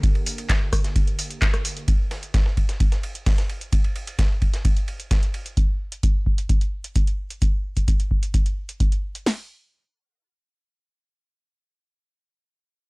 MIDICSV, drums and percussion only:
0, 0, Header, 1, 2, 480
1, 0, Start_track
1, 0, Key_signature, -2, "minor"
1, 0, Tempo, 461538
1, 34, Time_signature, 4, 2, 24, 8
1, 13406, End_track
2, 0, Start_track
2, 0, Title_t, "Drums"
2, 35, Note_on_c, 9, 36, 121
2, 35, Note_on_c, 9, 51, 83
2, 36, Note_on_c, 9, 42, 60
2, 139, Note_off_c, 9, 36, 0
2, 139, Note_off_c, 9, 51, 0
2, 140, Note_off_c, 9, 42, 0
2, 158, Note_on_c, 9, 51, 43
2, 262, Note_off_c, 9, 51, 0
2, 275, Note_on_c, 9, 46, 102
2, 275, Note_on_c, 9, 51, 66
2, 379, Note_off_c, 9, 46, 0
2, 379, Note_off_c, 9, 51, 0
2, 398, Note_on_c, 9, 42, 48
2, 398, Note_on_c, 9, 51, 44
2, 502, Note_off_c, 9, 42, 0
2, 502, Note_off_c, 9, 51, 0
2, 515, Note_on_c, 9, 36, 113
2, 515, Note_on_c, 9, 38, 117
2, 515, Note_on_c, 9, 42, 61
2, 515, Note_on_c, 9, 51, 87
2, 516, Note_on_c, 9, 39, 112
2, 619, Note_off_c, 9, 36, 0
2, 619, Note_off_c, 9, 38, 0
2, 619, Note_off_c, 9, 42, 0
2, 619, Note_off_c, 9, 51, 0
2, 620, Note_off_c, 9, 39, 0
2, 755, Note_on_c, 9, 36, 87
2, 755, Note_on_c, 9, 51, 64
2, 756, Note_on_c, 9, 37, 80
2, 756, Note_on_c, 9, 46, 104
2, 859, Note_off_c, 9, 36, 0
2, 859, Note_off_c, 9, 51, 0
2, 860, Note_off_c, 9, 37, 0
2, 860, Note_off_c, 9, 46, 0
2, 877, Note_on_c, 9, 38, 38
2, 878, Note_on_c, 9, 42, 48
2, 981, Note_off_c, 9, 38, 0
2, 982, Note_off_c, 9, 42, 0
2, 995, Note_on_c, 9, 36, 112
2, 995, Note_on_c, 9, 42, 57
2, 995, Note_on_c, 9, 51, 89
2, 1099, Note_off_c, 9, 36, 0
2, 1099, Note_off_c, 9, 42, 0
2, 1099, Note_off_c, 9, 51, 0
2, 1118, Note_on_c, 9, 42, 34
2, 1222, Note_off_c, 9, 42, 0
2, 1235, Note_on_c, 9, 46, 103
2, 1235, Note_on_c, 9, 51, 66
2, 1339, Note_off_c, 9, 46, 0
2, 1339, Note_off_c, 9, 51, 0
2, 1358, Note_on_c, 9, 42, 51
2, 1462, Note_off_c, 9, 42, 0
2, 1475, Note_on_c, 9, 36, 125
2, 1475, Note_on_c, 9, 38, 116
2, 1475, Note_on_c, 9, 42, 62
2, 1475, Note_on_c, 9, 51, 87
2, 1476, Note_on_c, 9, 39, 114
2, 1579, Note_off_c, 9, 36, 0
2, 1579, Note_off_c, 9, 38, 0
2, 1579, Note_off_c, 9, 42, 0
2, 1579, Note_off_c, 9, 51, 0
2, 1580, Note_off_c, 9, 39, 0
2, 1598, Note_on_c, 9, 37, 65
2, 1598, Note_on_c, 9, 42, 33
2, 1702, Note_off_c, 9, 37, 0
2, 1702, Note_off_c, 9, 42, 0
2, 1715, Note_on_c, 9, 46, 108
2, 1715, Note_on_c, 9, 51, 67
2, 1819, Note_off_c, 9, 46, 0
2, 1819, Note_off_c, 9, 51, 0
2, 1837, Note_on_c, 9, 42, 49
2, 1941, Note_off_c, 9, 42, 0
2, 1954, Note_on_c, 9, 42, 61
2, 1954, Note_on_c, 9, 51, 86
2, 1955, Note_on_c, 9, 36, 109
2, 2058, Note_off_c, 9, 42, 0
2, 2058, Note_off_c, 9, 51, 0
2, 2059, Note_off_c, 9, 36, 0
2, 2195, Note_on_c, 9, 38, 54
2, 2195, Note_on_c, 9, 51, 63
2, 2299, Note_off_c, 9, 38, 0
2, 2299, Note_off_c, 9, 51, 0
2, 2317, Note_on_c, 9, 42, 47
2, 2421, Note_off_c, 9, 42, 0
2, 2435, Note_on_c, 9, 36, 118
2, 2435, Note_on_c, 9, 38, 117
2, 2435, Note_on_c, 9, 42, 60
2, 2435, Note_on_c, 9, 51, 85
2, 2539, Note_off_c, 9, 36, 0
2, 2539, Note_off_c, 9, 38, 0
2, 2539, Note_off_c, 9, 42, 0
2, 2539, Note_off_c, 9, 51, 0
2, 2558, Note_on_c, 9, 38, 43
2, 2662, Note_off_c, 9, 38, 0
2, 2675, Note_on_c, 9, 36, 79
2, 2675, Note_on_c, 9, 51, 67
2, 2779, Note_off_c, 9, 36, 0
2, 2779, Note_off_c, 9, 51, 0
2, 2797, Note_on_c, 9, 38, 46
2, 2798, Note_on_c, 9, 42, 48
2, 2901, Note_off_c, 9, 38, 0
2, 2902, Note_off_c, 9, 42, 0
2, 2915, Note_on_c, 9, 36, 112
2, 2915, Note_on_c, 9, 42, 58
2, 2915, Note_on_c, 9, 51, 84
2, 3019, Note_off_c, 9, 36, 0
2, 3019, Note_off_c, 9, 42, 0
2, 3019, Note_off_c, 9, 51, 0
2, 3038, Note_on_c, 9, 38, 43
2, 3038, Note_on_c, 9, 42, 35
2, 3142, Note_off_c, 9, 38, 0
2, 3142, Note_off_c, 9, 42, 0
2, 3155, Note_on_c, 9, 51, 68
2, 3259, Note_off_c, 9, 51, 0
2, 3277, Note_on_c, 9, 42, 50
2, 3381, Note_off_c, 9, 42, 0
2, 3395, Note_on_c, 9, 36, 126
2, 3395, Note_on_c, 9, 38, 109
2, 3395, Note_on_c, 9, 42, 63
2, 3395, Note_on_c, 9, 46, 74
2, 3499, Note_off_c, 9, 36, 0
2, 3499, Note_off_c, 9, 38, 0
2, 3499, Note_off_c, 9, 42, 0
2, 3499, Note_off_c, 9, 46, 0
2, 3517, Note_on_c, 9, 42, 35
2, 3518, Note_on_c, 9, 38, 53
2, 3621, Note_off_c, 9, 42, 0
2, 3622, Note_off_c, 9, 38, 0
2, 3635, Note_on_c, 9, 51, 66
2, 3739, Note_off_c, 9, 51, 0
2, 3757, Note_on_c, 9, 42, 49
2, 3861, Note_off_c, 9, 42, 0
2, 3875, Note_on_c, 9, 36, 106
2, 3875, Note_on_c, 9, 42, 61
2, 3875, Note_on_c, 9, 51, 87
2, 3979, Note_off_c, 9, 36, 0
2, 3979, Note_off_c, 9, 42, 0
2, 3979, Note_off_c, 9, 51, 0
2, 3997, Note_on_c, 9, 51, 43
2, 4101, Note_off_c, 9, 51, 0
2, 4114, Note_on_c, 9, 51, 66
2, 4218, Note_off_c, 9, 51, 0
2, 4237, Note_on_c, 9, 42, 49
2, 4237, Note_on_c, 9, 51, 41
2, 4341, Note_off_c, 9, 42, 0
2, 4341, Note_off_c, 9, 51, 0
2, 4354, Note_on_c, 9, 38, 114
2, 4354, Note_on_c, 9, 42, 59
2, 4354, Note_on_c, 9, 51, 88
2, 4355, Note_on_c, 9, 36, 112
2, 4458, Note_off_c, 9, 38, 0
2, 4458, Note_off_c, 9, 42, 0
2, 4458, Note_off_c, 9, 51, 0
2, 4459, Note_off_c, 9, 36, 0
2, 4594, Note_on_c, 9, 51, 69
2, 4595, Note_on_c, 9, 36, 80
2, 4698, Note_off_c, 9, 51, 0
2, 4699, Note_off_c, 9, 36, 0
2, 4717, Note_on_c, 9, 38, 39
2, 4717, Note_on_c, 9, 42, 49
2, 4821, Note_off_c, 9, 38, 0
2, 4821, Note_off_c, 9, 42, 0
2, 4834, Note_on_c, 9, 36, 107
2, 4834, Note_on_c, 9, 42, 57
2, 4834, Note_on_c, 9, 51, 90
2, 4938, Note_off_c, 9, 36, 0
2, 4938, Note_off_c, 9, 42, 0
2, 4938, Note_off_c, 9, 51, 0
2, 4957, Note_on_c, 9, 42, 34
2, 5061, Note_off_c, 9, 42, 0
2, 5074, Note_on_c, 9, 51, 65
2, 5178, Note_off_c, 9, 51, 0
2, 5197, Note_on_c, 9, 42, 48
2, 5301, Note_off_c, 9, 42, 0
2, 5314, Note_on_c, 9, 36, 116
2, 5314, Note_on_c, 9, 38, 112
2, 5314, Note_on_c, 9, 42, 65
2, 5314, Note_on_c, 9, 51, 83
2, 5418, Note_off_c, 9, 36, 0
2, 5418, Note_off_c, 9, 38, 0
2, 5418, Note_off_c, 9, 42, 0
2, 5418, Note_off_c, 9, 51, 0
2, 5437, Note_on_c, 9, 42, 35
2, 5541, Note_off_c, 9, 42, 0
2, 5554, Note_on_c, 9, 51, 68
2, 5658, Note_off_c, 9, 51, 0
2, 5677, Note_on_c, 9, 42, 51
2, 5781, Note_off_c, 9, 42, 0
2, 5794, Note_on_c, 9, 36, 106
2, 5794, Note_on_c, 9, 42, 63
2, 5898, Note_off_c, 9, 36, 0
2, 5898, Note_off_c, 9, 42, 0
2, 6157, Note_on_c, 9, 42, 52
2, 6261, Note_off_c, 9, 42, 0
2, 6274, Note_on_c, 9, 42, 67
2, 6275, Note_on_c, 9, 36, 111
2, 6378, Note_off_c, 9, 42, 0
2, 6379, Note_off_c, 9, 36, 0
2, 6514, Note_on_c, 9, 36, 78
2, 6618, Note_off_c, 9, 36, 0
2, 6636, Note_on_c, 9, 42, 53
2, 6740, Note_off_c, 9, 42, 0
2, 6754, Note_on_c, 9, 42, 60
2, 6755, Note_on_c, 9, 36, 106
2, 6858, Note_off_c, 9, 42, 0
2, 6859, Note_off_c, 9, 36, 0
2, 6876, Note_on_c, 9, 42, 35
2, 6980, Note_off_c, 9, 42, 0
2, 7117, Note_on_c, 9, 42, 54
2, 7221, Note_off_c, 9, 42, 0
2, 7234, Note_on_c, 9, 42, 65
2, 7235, Note_on_c, 9, 36, 115
2, 7338, Note_off_c, 9, 42, 0
2, 7339, Note_off_c, 9, 36, 0
2, 7357, Note_on_c, 9, 42, 35
2, 7461, Note_off_c, 9, 42, 0
2, 7597, Note_on_c, 9, 42, 51
2, 7701, Note_off_c, 9, 42, 0
2, 7714, Note_on_c, 9, 42, 65
2, 7715, Note_on_c, 9, 36, 103
2, 7818, Note_off_c, 9, 42, 0
2, 7819, Note_off_c, 9, 36, 0
2, 8077, Note_on_c, 9, 36, 59
2, 8077, Note_on_c, 9, 42, 51
2, 8181, Note_off_c, 9, 36, 0
2, 8181, Note_off_c, 9, 42, 0
2, 8194, Note_on_c, 9, 42, 66
2, 8195, Note_on_c, 9, 36, 108
2, 8298, Note_off_c, 9, 42, 0
2, 8299, Note_off_c, 9, 36, 0
2, 8317, Note_on_c, 9, 42, 38
2, 8421, Note_off_c, 9, 42, 0
2, 8435, Note_on_c, 9, 36, 76
2, 8539, Note_off_c, 9, 36, 0
2, 8557, Note_on_c, 9, 42, 53
2, 8661, Note_off_c, 9, 42, 0
2, 8674, Note_on_c, 9, 42, 64
2, 8675, Note_on_c, 9, 36, 107
2, 8778, Note_off_c, 9, 42, 0
2, 8779, Note_off_c, 9, 36, 0
2, 8797, Note_on_c, 9, 42, 38
2, 8901, Note_off_c, 9, 42, 0
2, 9037, Note_on_c, 9, 42, 54
2, 9141, Note_off_c, 9, 42, 0
2, 9155, Note_on_c, 9, 36, 115
2, 9155, Note_on_c, 9, 42, 63
2, 9259, Note_off_c, 9, 36, 0
2, 9259, Note_off_c, 9, 42, 0
2, 9277, Note_on_c, 9, 42, 35
2, 9381, Note_off_c, 9, 42, 0
2, 9517, Note_on_c, 9, 42, 54
2, 9621, Note_off_c, 9, 42, 0
2, 9635, Note_on_c, 9, 38, 100
2, 9635, Note_on_c, 9, 46, 77
2, 9739, Note_off_c, 9, 38, 0
2, 9739, Note_off_c, 9, 46, 0
2, 13406, End_track
0, 0, End_of_file